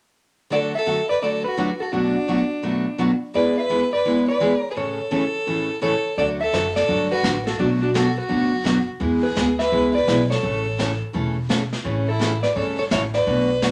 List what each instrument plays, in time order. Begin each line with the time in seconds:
0.50 steel-string acoustic guitar D3 F#3 A3 D4 F#4, fiddle A4, hollow-body jazz guitar D5
0.75 fiddle A4, hollow-body jazz guitar E5
0.86 steel-string acoustic guitar D3 F#3 A3 D4 F#4
1.09 fiddle B4, hollow-body jazz guitar D5
1.22 steel-string acoustic guitar D3 F#3 A3 D4 F#4, fiddle A4, hollow-body jazz guitar D5
1.44 fiddle F#4, hollow-body jazz guitar B4
1.57 steel-string acoustic guitar D3 F#3 A3 D4 F#4
1.80 fiddle F#4, hollow-body jazz guitar A4
1.93 steel-string acoustic guitar B2 F#3 A3 D4 F#4, fiddle D4, hollow-body jazz guitar F#4
2.28 steel-string acoustic guitar B2 F#3 A3 D4 F#4
2.62 steel-string acoustic guitar B2 F#3 A3 D4 F#4
2.98 steel-string acoustic guitar B2 F#3 A3 D4 F#4
3.34 steel-string acoustic guitar E3 G#3 B3 E4 G#4, fiddle B4, hollow-body jazz guitar D5
3.57 fiddle B4, hollow-body jazz guitar E5
3.69 steel-string acoustic guitar E3 G#3 B3 E4 G#4
3.93 fiddle B4, hollow-body jazz guitar D5
4.05 steel-string acoustic guitar E3 G#3 B3 E4 G#4
4.28 fiddle B4, hollow-body jazz guitar D5
4.40 steel-string acoustic guitar E3 G#3 B3 E4 G#4
4.57 fiddle A#4, hollow-body jazz guitar C#5
4.71 fiddle G#4, hollow-body jazz guitar B4
4.76 steel-string acoustic guitar A2 C#3 E3 A3 C#4 A4, fiddle A4, hollow-body jazz guitar C#5
5.11 steel-string acoustic guitar A2 C#3 E3 A3 C#4 A4
5.47 steel-string acoustic guitar A2 C#3 E3 A3 C#4 A4
5.81 steel-string acoustic guitar A2 C#3 E3 A3 C#4 A4, fiddle A4, hollow-body jazz guitar C#5
6.18 upright bass D2, steel-string acoustic guitar D3 F#3 A3 D4 F#4, fiddle A4, hollow-body jazz guitar D5, brush sweep
6.41 fiddle A4, hollow-body jazz guitar E5
6.52 upright bass F#1, steel-string acoustic guitar D3 F#3 A3 D4 F#4, snare, hi-hat pedal
6.75 fiddle A4, hollow-body jazz guitar D5, snare
6.88 upright bass G1, steel-string acoustic guitar D3 F#3 A3 D4 F#4, brush sweep
7.11 fiddle F#4, hollow-body jazz guitar B4
7.23 upright bass A1, steel-string acoustic guitar D3 F#3 A3 D4 F#4, snare, hi-hat pedal
7.47 fiddle F#4, hollow-body jazz guitar A4, snare
7.59 upright bass B1, steel-string acoustic guitar B2 F#3 A3 D4 F#4, fiddle D4, hollow-body jazz guitar F#4, brush sweep
7.81 fiddle D4, hollow-body jazz guitar F#4
7.94 steel-string acoustic guitar B2 F#3 A3 D4 F#4, fiddle F#4, hollow-body jazz guitar A4, snare, hi-hat pedal
8.18 fiddle F#4, hollow-body jazz guitar B4
8.28 upright bass F#1, steel-string acoustic guitar B2 F#3 A3 D4 F#4, brush sweep
8.64 steel-string acoustic guitar B2 F#3 A3 D4 F#4, snare, hi-hat pedal
9.00 upright bass E2, steel-string acoustic guitar E3 G#3 B3 E4 G#4, brush sweep
9.23 fiddle G#4, hollow-body jazz guitar B4
9.35 upright bass D2, steel-string acoustic guitar E3 G#3 B3 E4 G#4, snare, hi-hat pedal
9.59 fiddle B4, hollow-body jazz guitar E5, snare
9.71 upright bass C#2, steel-string acoustic guitar E3 G#3 B3 E4 G#4, brush sweep
9.95 fiddle B4, hollow-body jazz guitar D5
10.07 upright bass B1, steel-string acoustic guitar E3 G#3 B3 E4 G#4, snare, hi-hat pedal
10.30 fiddle A4, hollow-body jazz guitar C#5, snare
10.43 upright bass A1, steel-string acoustic guitar C#3 E3 A3 C#4 A4, brush sweep
10.78 steel-string acoustic guitar C#3 E3 A3 C#4 A4, snare, hi-hat pedal
11.13 upright bass E1, steel-string acoustic guitar C#3 E3 A3 C#4 A4, brush sweep
11.49 steel-string acoustic guitar C#3 E3 A3 C#4 A4, snare, hi-hat pedal
11.73 snare
11.84 upright bass A1, steel-string acoustic guitar C#3 E3 A3 C#4 A4, brush sweep
12.07 fiddle E4, hollow-body jazz guitar A4
12.19 steel-string acoustic guitar C#3 E3 A3 C#4 A4, snare, hi-hat pedal
12.42 fiddle B4, hollow-body jazz guitar D5, snare
12.54 upright bass G1, steel-string acoustic guitar C#3 E3 A3 C#4 A4, fiddle A4, hollow-body jazz guitar C#5, brush sweep
12.78 fiddle A4, hollow-body jazz guitar C#5
12.91 upright bass A1, steel-string acoustic guitar C#3 E3 A3 C#4 A4, fiddle C#5, hollow-body jazz guitar E5, snare, hi-hat pedal
13.14 fiddle B4, hollow-body jazz guitar D5, snare
13.26 upright bass B1, steel-string acoustic guitar B2 F#3 A3 D4 F#4, brush sweep
13.62 steel-string acoustic guitar B2 F#3 A3 D4 F#4, snare, hi-hat pedal